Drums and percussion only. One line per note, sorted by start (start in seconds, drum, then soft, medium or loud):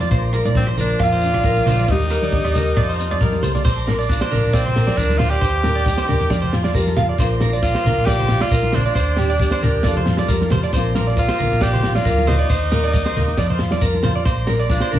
0.01 closed hi-hat medium
0.01 high conga medium
0.01 shekere soft
0.11 kick loud
0.11 closed hi-hat medium
0.11 shekere loud
0.33 cross-stick medium
0.33 closed hi-hat medium
0.33 shekere medium
0.45 closed hi-hat medium
0.45 high conga medium
0.45 shekere soft
0.55 kick medium
0.55 closed hi-hat medium
0.55 high conga medium
0.55 shekere loud
0.67 cross-stick medium
0.77 closed hi-hat medium
0.77 low conga medium
0.77 shekere medium
0.90 closed hi-hat medium
0.99 kick loud
0.99 cross-stick medium
0.99 closed hi-hat medium
0.99 shekere medium
1.22 closed hi-hat soft
1.22 shekere medium
1.34 cross-stick medium
1.34 closed hi-hat soft
1.34 low conga medium
1.34 shekere soft
1.44 kick loud
1.44 closed hi-hat medium
1.44 shekere medium
1.57 high conga medium
1.66 cross-stick medium
1.66 closed hi-hat soft
1.66 low conga medium
1.66 shekere medium
1.79 closed hi-hat soft
1.79 high conga medium
1.79 shekere soft
1.88 kick loud
1.88 closed hi-hat soft
1.88 shekere loud
2.01 shekere soft
2.10 cross-stick medium
2.10 closed hi-hat soft
2.10 shekere medium
2.22 closed hi-hat medium
2.22 high conga medium
2.22 shekere soft
2.32 kick loud
2.32 closed hi-hat medium
2.32 high conga medium
2.32 shekere medium
2.44 cross-stick medium
2.44 shekere soft
2.55 closed hi-hat medium
2.55 high conga medium
2.55 low conga medium
2.55 shekere medium
2.66 closed hi-hat soft
2.66 shekere soft
2.77 kick loud
2.77 cross-stick medium
2.77 closed hi-hat medium
2.77 shekere medium
2.90 shekere soft
2.99 closed hi-hat medium
2.99 shekere medium
3.11 cross-stick medium
3.11 closed hi-hat medium
3.11 high conga medium
3.21 kick loud
3.21 closed hi-hat medium
3.21 high conga medium
3.21 shekere loud
3.32 high conga medium
3.32 shekere soft
3.43 closed hi-hat soft
3.43 low conga medium
3.43 shekere medium
3.55 closed hi-hat medium
3.55 low conga medium
3.55 shekere soft
3.65 kick loud
3.65 crash medium
3.65 shekere medium
3.88 snare medium
3.88 high conga medium
3.88 shekere medium
4.00 shekere soft
4.09 kick loud
4.09 snare soft
4.09 shekere medium
4.21 snare medium
4.32 low conga medium
4.32 shekere loud
4.53 kick loud
4.53 snare medium
4.53 shekere medium
4.65 low conga medium
4.76 snare medium
4.76 shekere medium
4.87 snare medium
4.87 high conga medium
4.87 shekere soft
4.97 kick loud
4.97 shekere medium
5.10 snare soft
5.10 high conga medium
5.19 snare medium
5.19 low conga medium
5.19 shekere medium
5.42 kick loud
5.42 shekere medium
5.63 snare medium
5.63 high conga medium
5.63 shekere medium
5.78 shekere soft
5.86 kick loud
5.86 snare soft
5.86 shekere medium
5.97 snare medium
6.09 low conga medium
6.09 shekere loud
6.20 snare soft
6.30 kick loud
6.30 snare medium
6.30 shekere medium
6.43 low conga medium
6.53 snare medium
6.53 shekere medium
6.64 snare medium
6.64 high conga medium
6.64 shekere soft
6.74 kick loud
6.74 shekere medium
6.87 snare soft
6.87 high conga medium
6.96 snare medium
6.96 low conga medium
6.96 shekere medium
7.18 kick loud
7.18 snare soft
7.18 shekere medium
7.40 snare medium
7.40 high conga medium
7.40 shekere medium
7.54 shekere soft
7.63 kick loud
7.63 snare soft
7.63 shekere medium
7.75 snare medium
7.85 low conga medium
7.85 shekere loud
8.07 kick loud
8.07 snare medium
8.07 shekere medium
8.19 low conga medium
8.28 snare medium
8.28 shekere medium
8.41 snare medium
8.41 high conga medium
8.41 shekere soft
8.51 kick loud
8.51 shekere medium
8.63 high conga medium
8.72 snare medium
8.72 low conga medium
8.72 shekere loud
8.95 kick loud
8.95 snare soft
8.95 shekere medium
9.17 snare medium
9.17 high conga medium
9.17 shekere medium
9.31 shekere soft
9.40 kick loud
9.40 shekere medium
9.51 snare medium
9.63 low conga medium
9.63 shekere loud
9.83 kick loud
9.83 snare medium
9.83 shekere medium
9.96 low conga medium
10.06 snare medium
10.06 high conga medium
10.06 shekere loud
10.17 snare medium
10.17 high conga medium
10.17 shekere soft
10.28 kick loud
10.28 shekere medium
10.41 snare soft
10.41 high conga medium
10.50 snare medium
10.50 low conga medium
10.50 shekere loud
10.63 shekere soft
10.73 kick loud
10.73 snare soft
10.73 shekere medium
10.95 snare medium
10.95 high conga medium
10.95 shekere loud
11.08 shekere soft
11.17 kick loud
11.17 snare soft
11.17 shekere medium
11.28 snare medium
11.40 low conga medium
11.40 shekere loud
11.51 snare soft
11.61 kick medium
11.61 snare medium
11.61 shekere medium
11.75 low conga medium
11.83 snare medium
11.83 shekere loud
11.95 snare medium
11.95 high conga medium
11.95 shekere soft
12.05 kick loud
12.05 shekere medium
12.18 snare soft
12.18 high conga medium
12.28 snare medium
12.28 low conga medium
12.28 shekere medium
12.50 kick loud
12.50 snare soft
12.50 shekere medium
12.72 snare medium
12.72 high conga medium
12.72 shekere medium
12.84 shekere soft
12.94 kick loud
12.94 shekere medium
13.06 snare medium
13.16 low conga medium
13.16 shekere loud
13.27 snare soft
13.37 kick medium
13.37 snare medium
13.37 shekere medium
13.50 low conga medium
13.59 snare medium
13.59 shekere medium
13.71 snare medium
13.71 high conga medium
13.71 shekere soft
13.81 kick loud
13.81 shekere medium
13.94 high conga medium
14.03 snare medium
14.03 low conga medium
14.03 shekere medium
14.25 kick loud
14.25 snare soft
14.25 shekere medium
14.47 snare medium
14.47 high conga medium
14.47 shekere medium
14.60 shekere soft
14.69 kick loud
14.69 snare soft
14.69 shekere medium
14.80 snare medium
14.92 low conga medium
14.92 shekere medium